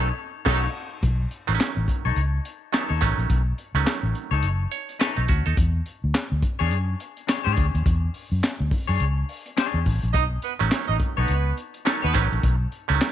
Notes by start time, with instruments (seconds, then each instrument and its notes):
0.45 fingered electric bass B1, clav D#3 F#3 A3 C#4, horn section F#3 D#4 A4, clean electric guitar D#4 A4 C#5, kick, snare, crash
1.03 fingered electric bass B1, kick, closed hi-hat
1.31 closed hi-hat
1.47 fingered electric bass A1, clav D#3 F#3 A3 C4
1.55 clav C#4
1.60 snare, clap, closed hi-hat
1.77 fingered electric bass A1
1.88 kick, closed hi-hat
2.05 fingered electric bass B1, clean electric guitar D#4 A4 C#5
2.16 fingered electric bass C#2, closed hi-hat
2.45 closed hi-hat
2.72 clav D#3 F#3 A3 B3, clean electric guitar D#4 A4 C#5, snare, clap, closed hi-hat
2.89 fingered electric bass D#2, clean electric guitar D#4 A4 C#5
3.01 fingered electric bass A1, clav D#3 F#3 A3 C#4, kick, closed hi-hat
3.18 fingered electric bass A#1, closed hi-hat
3.30 fingered electric bass B1, kick, closed hi-hat
3.58 closed hi-hat
3.74 fingered electric bass C#2, clav D#3 F#3 A3 C#4
3.87 snare, clap, closed hi-hat
4.03 fingered electric bass A1
4.15 closed hi-hat
4.31 fingered electric bass C#2, clean electric guitar D#4 A4 C#5
4.42 fingered electric bass F#1, closed hi-hat
4.72 clav C#5, closed hi-hat
4.89 closed hi-hat
4.99 clean electric guitar D#4 A4 C#5, clav B4, snare, clap, closed hi-hat
5.17 fingered electric bass B1, clav A3 D#4
5.28 fingered electric bass D2, clav C#4 F#4, kick, closed hi-hat
5.46 fingered electric bass D#2, clav D#4 A4
5.57 fingered electric bass E2, kick, closed hi-hat
5.86 closed hi-hat
6.04 fingered electric bass D2
6.15 snare, clap, closed hi-hat
6.32 fingered electric bass D2
6.43 kick, closed hi-hat
6.59 fingered electric bass E2, clean electric guitar D4 G#4 C#5
6.71 fingered electric bass F#2, closed hi-hat
7.00 closed hi-hat
7.17 closed hi-hat
7.27 clean electric guitar D4 G#4 C#5, snare, clap, closed hi-hat
7.45 fingered electric bass G#2, clean electric guitar D4 G#4 C#5
7.57 fingered electric bass D2, kick, closed hi-hat
7.75 fingered electric bass D#2, closed hi-hat
7.86 fingered electric bass E2, kick, closed hi-hat
8.14 open hi-hat
8.32 fingered electric bass F#2
8.44 snare, clap, closed hi-hat
8.60 fingered electric bass D2
8.71 kick, open hi-hat
8.87 fingered electric bass F#2, clean electric guitar D4 G#4 C#5
9.00 fingered electric bass C#2, closed hi-hat
9.29 open hi-hat
9.46 closed hi-hat
9.57 clean electric guitar D4 G#4 C#5, snare, clap, closed hi-hat
9.74 fingered electric bass E2
9.86 fingered electric bass A1, kick, open hi-hat
10.03 fingered electric bass A#1, closed hi-hat
10.13 fingered electric bass B1, horn section D#4 D#5, kick, closed hi-hat
10.42 horn section B3 B4, closed hi-hat
10.59 fingered electric bass A1, clav D#3 F#3 A3 C#4
10.71 horn section C#4 C#5, snare, clap, closed hi-hat
10.88 fingered electric bass A1, horn section D#4 D#5
11.00 kick, closed hi-hat
11.17 fingered electric bass B1, horn section B3 B4, clean electric guitar D#4 A4 C#5
11.28 fingered electric bass C#2, closed hi-hat
11.57 closed hi-hat
11.74 closed hi-hat
11.85 clav D#3 F#3 A3 C#4, clean electric guitar D#4 A4 C#5, snare, clap, closed hi-hat
12.02 fingered electric bass D#2, horn section B3 B4, clean electric guitar D#4 A4 C#5
12.14 fingered electric bass A1, clav D#3 F#3 A3 C#4, kick, closed hi-hat
12.32 fingered electric bass A#1, closed hi-hat
12.43 fingered electric bass B1, kick, closed hi-hat
12.72 closed hi-hat
12.88 fingered electric bass C#2, clav D3 F#3 A3 C#4
12.95 clav D#3
13.01 snare, clap, closed hi-hat